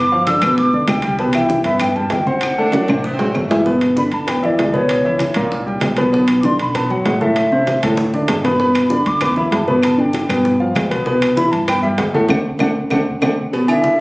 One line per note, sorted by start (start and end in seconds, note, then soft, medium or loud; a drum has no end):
0.00 0.37 G1 medium
0.00 0.25 D6 loud
0.12 0.24 F3 medium
0.12 0.24 F4 medium
0.12 0.25 F5 medium
0.12 high bongo soft
0.12 high conga soft
0.26 0.40 D3 medium
0.26 0.40 D4 medium
0.26 0.40 D5 medium
0.26 0.55 E6 loud
0.26 high bongo medium
0.26 high conga medium
0.26 high timbale medium
0.26 low timbale medium
0.42 0.71 D2 medium
0.42 0.68 B2 medium
0.42 0.68 B3 medium
0.42 0.68 B4 medium
0.42 high conga soft
0.42 high timbale medium
0.42 claves medium
0.57 0.86 D6 loud
0.57 high bongo medium
0.57 high conga soft
0.73 0.87 D2 medium
0.73 0.99 D3 medium
0.73 0.99 D4 medium
0.73 0.99 D5 medium
0.73 high bongo soft
0.73 high conga soft
0.87 1.60 C2 medium
0.87 1.17 G5 medium
0.87 high bongo soft
0.87 low bongo medium
0.87 high conga medium
0.87 high timbale medium
0.87 low timbale medium
0.87 claves medium
1.02 1.16 G3 medium
1.02 1.17 G4 medium
1.02 1.17 G5 medium
1.02 high bongo soft
1.02 high conga medium
1.02 high timbale medium
1.19 1.32 B2 medium
1.19 1.32 B3 medium
1.19 1.32 B4 medium
1.19 1.25 A5 loud
1.19 high bongo medium
1.19 high conga soft
1.33 1.60 E3 medium
1.33 1.60 E4 medium
1.33 1.60 E5 medium
1.33 1.64 G5 medium
1.33 high bongo soft
1.33 high conga soft
1.33 high timbale medium
1.33 claves medium
1.49 high bongo medium
1.49 high conga medium
1.49 low timbale medium
1.64 2.08 G2 medium
1.64 1.91 B3 medium
1.64 1.91 B4 medium
1.64 1.79 E5 loud
1.64 1.91 B5 medium
1.64 high conga soft
1.64 high timbale medium
1.80 1.97 G5 loud
1.80 high bongo medium
1.80 high conga soft
1.80 low conga medium
1.80 high timbale medium
1.80 claves medium
1.96 2.22 G3 medium
1.96 2.22 G4 medium
1.96 2.22 G5 medium
1.96 2.14 A5 medium
1.96 high bongo soft
1.96 high conga soft
1.96 low conga medium
2.10 2.83 D2 medium
2.10 2.28 G5 medium
2.10 high bongo soft
2.10 low bongo medium
2.10 high conga soft
2.10 high timbale medium
2.10 low timbale medium
2.26 2.52 C4 medium
2.26 2.53 C5 medium
2.26 3.35 F#5 loud
2.26 2.52 C6 medium
2.26 high bongo soft
2.26 high conga medium
2.41 high bongo medium
2.41 high conga soft
2.41 high timbale medium
2.41 claves medium
2.58 2.71 A3 medium
2.58 3.02 D4 loud
2.58 2.71 A4 medium
2.58 2.71 A5 medium
2.58 high bongo soft
2.58 high conga soft
2.72 2.86 F#3 medium
2.72 2.86 F#4 medium
2.72 2.87 F#5 medium
2.72 high bongo soft
2.72 high conga medium
2.72 high timbale medium
2.88 3.18 A1 medium
2.88 3.14 C3 medium
2.88 3.14 C4 medium
2.88 3.14 C5 medium
2.88 high conga soft
2.88 high timbale medium
2.88 claves medium
3.04 3.12 B3 loud
3.04 high bongo medium
3.04 high conga soft
3.13 3.34 C4 loud
3.19 3.34 A1 medium
3.19 3.45 F#3 medium
3.19 3.45 F#4 medium
3.19 3.45 F#5 medium
3.19 high bongo soft
3.19 high conga soft
3.19 low timbale loud
3.35 4.07 G1 medium
3.35 3.66 A3 medium
3.35 high bongo soft
3.35 low bongo medium
3.35 high conga medium
3.35 low timbale medium
3.35 claves medium
3.50 3.63 E3 medium
3.50 3.63 E4 medium
3.50 3.64 E5 medium
3.50 high bongo soft
3.50 high conga medium
3.50 low timbale medium
3.66 3.91 B2 medium
3.66 3.91 B3 medium
3.66 3.92 B4 medium
3.66 high bongo medium
3.66 high conga soft
3.81 high bongo soft
3.81 high conga soft
3.81 high timbale medium
3.96 4.22 D3 medium
3.96 4.22 D4 medium
3.96 4.22 D5 medium
3.96 4.15 B5 loud
3.96 high bongo medium
3.96 high conga medium
3.96 low timbale medium
4.12 4.56 D2 medium
4.12 4.30 A5 loud
4.12 high conga soft
4.12 high timbale medium
4.27 4.40 B3 medium
4.27 4.40 B4 medium
4.27 4.46 G5 loud
4.27 4.40 B5 medium
4.27 high bongo medium
4.27 high conga soft
4.27 low conga medium
4.27 high timbale loud
4.42 4.68 E3 medium
4.42 4.68 E4 medium
4.42 4.76 D5 medium
4.42 4.68 E5 medium
4.42 high bongo soft
4.42 high conga soft
4.42 low conga medium
4.58 5.31 C#2 medium
4.58 high bongo soft
4.58 low bongo medium
4.58 high conga soft
4.58 high timbale medium
4.58 low timbale medium
4.73 4.99 B2 medium
4.73 4.99 B3 medium
4.73 4.99 B4 medium
4.73 5.36 C#5 medium
4.73 high bongo soft
4.73 high conga medium
4.89 high bongo medium
4.89 high conga soft
4.89 high timbale medium
5.05 5.30 E3 medium
5.05 5.31 E4 medium
5.05 5.31 E5 medium
5.05 high bongo soft
5.05 high conga soft
5.19 high bongo soft
5.19 high conga medium
5.19 high timbale medium
5.19 low timbale medium
5.34 5.79 C2 medium
5.34 5.61 A#2 medium
5.34 5.61 A#3 medium
5.34 5.61 A#4 medium
5.34 high conga soft
5.34 high timbale medium
5.52 high bongo medium
5.52 high conga soft
5.66 5.92 G3 medium
5.66 5.92 G4 medium
5.66 5.92 G5 medium
5.66 high bongo soft
5.66 high conga soft
5.81 6.54 B1 medium
5.81 high bongo soft
5.81 low bongo medium
5.81 high conga medium
5.81 high timbale medium
5.81 low timbale medium
5.97 6.10 B2 medium
5.97 6.10 B3 loud
5.97 6.10 B4 medium
5.97 high bongo soft
5.97 high conga medium
5.97 high timbale medium
6.12 6.38 B2 medium
6.12 6.38 B3 medium
6.12 6.38 B4 medium
6.12 high bongo medium
6.12 high conga soft
6.28 high bongo soft
6.28 high conga soft
6.28 high timbale loud
6.40 6.69 D3 medium
6.40 6.69 D4 medium
6.40 6.46 D6 medium
6.40 high conga medium
6.40 low timbale medium
6.45 6.70 D5 medium
6.45 6.60 C6 loud
6.45 high bongo medium
6.59 7.03 B2 medium
6.59 6.77 B5 loud
6.59 high conga soft
6.59 high timbale medium
6.75 6.87 B3 medium
6.75 6.87 B4 medium
6.75 6.93 A5 loud
6.75 6.87 B5 medium
6.75 high bongo medium
6.75 high conga soft
6.75 low conga medium
6.75 high timbale medium
6.89 7.15 F#3 medium
6.89 7.16 F#4 medium
6.89 7.16 F#5 medium
6.89 7.24 F#5 loud
6.89 high bongo soft
6.89 high conga soft
6.89 low conga medium
7.05 7.77 A2 medium
7.05 high bongo soft
7.05 low bongo medium
7.05 high conga soft
7.05 high timbale medium
7.05 low timbale medium
7.21 7.46 A2 medium
7.21 7.46 A3 medium
7.21 7.47 A4 medium
7.21 7.84 E5 medium
7.21 high bongo soft
7.21 high conga medium
7.36 high bongo medium
7.36 high conga soft
7.36 high timbale medium
7.52 7.77 C3 medium
7.52 7.77 C4 medium
7.52 7.78 C5 medium
7.52 high bongo soft
7.52 high conga soft
7.67 high bongo medium
7.67 high conga medium
7.67 high timbale medium
7.67 low timbale medium
7.83 8.26 D2 medium
7.83 8.08 A2 medium
7.83 8.08 A3 medium
7.83 8.08 A4 medium
7.83 high conga soft
7.83 high timbale medium
7.97 high bongo medium
8.14 8.39 D3 medium
8.14 8.39 D4 medium
8.14 8.39 D5 medium
8.14 high bongo medium
8.14 high conga soft
8.28 9.01 G1 medium
8.28 8.43 A5 medium
8.28 low bongo medium
8.28 high conga medium
8.28 high timbale loud
8.28 low timbale medium
8.44 8.57 B2 medium
8.44 8.57 B3 medium
8.44 8.57 B4 medium
8.44 9.09 B5 loud
8.44 low bongo loud
8.44 high timbale medium
8.60 8.85 B2 medium
8.60 8.85 B3 medium
8.60 8.85 B4 medium
8.60 high bongo medium
8.60 high conga soft
8.75 high bongo soft
8.75 high conga soft
8.75 high timbale medium
8.75 claves medium
8.90 9.16 D3 medium
8.90 9.16 D4 medium
8.90 9.16 D5 medium
8.90 high bongo medium
8.90 high conga medium
8.90 low timbale medium
9.06 9.49 D2 medium
9.06 9.22 D6 loud
9.06 high conga soft
9.06 high timbale medium
9.21 9.34 B3 medium
9.21 9.34 B4 medium
9.21 9.35 B5 medium
9.21 9.37 D6 loud
9.21 high bongo medium
9.21 high conga soft
9.21 low conga medium
9.21 high timbale medium
9.21 claves medium
9.36 9.62 E3 medium
9.36 9.62 E4 medium
9.36 9.63 E5 medium
9.36 9.52 B5 loud
9.36 high bongo soft
9.36 high conga soft
9.36 low conga medium
9.52 10.24 G1 medium
9.52 9.72 A5 medium
9.52 high bongo soft
9.52 low bongo medium
9.52 high conga soft
9.52 high timbale medium
9.52 low timbale medium
9.68 9.93 B2 medium
9.68 9.93 B3 medium
9.68 9.93 B4 medium
9.68 9.86 B5 medium
9.68 high bongo soft
9.68 high conga medium
9.83 10.02 A5 loud
9.83 high bongo medium
9.83 high conga soft
9.83 high timbale medium
9.83 claves medium
9.98 10.23 D3 medium
9.98 10.24 D4 medium
9.98 10.24 D5 medium
9.98 10.92 G5 medium
9.98 high bongo soft
9.98 high conga soft
10.13 high bongo medium
10.13 high conga medium
10.13 high timbale medium
10.13 low timbale medium
10.29 10.72 G2 medium
10.29 10.54 B2 medium
10.29 10.54 B3 medium
10.29 10.55 B4 medium
10.29 high timbale medium
10.29 claves medium
10.45 high bongo medium
10.45 high conga soft
10.60 10.85 F3 medium
10.60 10.85 F4 medium
10.60 10.86 F5 medium
10.60 high bongo soft
10.60 high conga soft
10.75 11.47 C2 medium
10.75 high bongo soft
10.75 low bongo medium
10.75 high conga medium
10.75 high timbale medium
10.75 low timbale medium
10.75 claves medium
10.91 11.04 B2 medium
10.91 11.04 B3 medium
10.91 11.04 B4 medium
10.91 high bongo soft
10.91 high conga medium
10.91 high timbale medium
11.06 11.32 B2 medium
11.06 11.32 B3 medium
11.06 11.32 B4 medium
11.06 high bongo medium
11.22 high bongo soft
11.22 high conga soft
11.22 high timbale loud
11.22 claves medium
11.37 11.62 E3 medium
11.37 11.63 E4 medium
11.37 11.63 E5 medium
11.37 11.53 B5 loud
11.37 high bongo medium
11.37 high conga loud
11.37 low timbale medium
11.52 11.96 G2 medium
11.52 11.67 A5 loud
11.52 high conga soft
11.52 high timbale medium
11.67 11.81 B3 medium
11.67 11.81 B4 medium
11.67 11.81 G5 loud
11.67 11.81 B5 medium
11.67 high bongo medium
11.67 high conga soft
11.67 low conga medium
11.67 high timbale loud
11.67 claves medium
11.82 12.09 G3 medium
11.82 12.09 G4 medium
11.82 11.88 E5 medium
11.82 12.09 G5 medium
11.82 high bongo soft
11.82 high conga soft
11.98 12.28 D2 medium
11.98 12.04 F#5 medium
11.98 high bongo soft
11.98 low bongo medium
11.98 high conga soft
11.98 high timbale medium
11.98 low timbale medium
12.13 12.27 A2 medium
12.13 12.27 A3 loud
12.13 12.27 A4 medium
12.13 12.28 F#5 medium
12.13 high bongo soft
12.13 high conga medium
12.29 12.41 D2 loud
12.29 12.39 A3 loud
12.29 12.39 C4 loud
12.29 12.39 D4 medium
12.29 12.39 F#5 loud
12.29 low bongo loud
12.29 high conga medium
12.29 high timbale medium
12.29 claves loud
12.59 12.72 D2 medium
12.59 12.70 A3 loud
12.59 12.70 C4 medium
12.59 12.70 D4 loud
12.59 12.71 F#5 loud
12.59 low bongo medium
12.59 high conga loud
12.59 high timbale loud
12.59 claves loud
12.90 13.03 D2 loud
12.90 13.01 A3 medium
12.90 13.01 C4 medium
12.90 13.01 D4 loud
12.90 13.01 F#5 medium
12.90 low bongo medium
12.90 high conga loud
12.90 high timbale loud
12.90 claves loud
13.22 13.33 D2 medium
13.22 13.32 A3 loud
13.22 13.32 C4 loud
13.22 13.32 D4 loud
13.22 13.32 F#5 medium
13.22 low bongo loud
13.22 high conga medium
13.22 high timbale loud
13.22 claves loud
13.53 13.66 B2 medium
13.53 13.66 B3 medium
13.53 13.66 B4 medium
13.53 cowbell loud
13.53 low agogo medium
13.68 13.94 D3 medium
13.68 13.94 D4 medium
13.68 13.94 E4 medium
13.68 14.00 E5 loud
13.68 high conga soft
13.68 low agogo loud
13.68 claves medium
13.84 cowbell medium
13.84 high conga loud
13.84 low timbale medium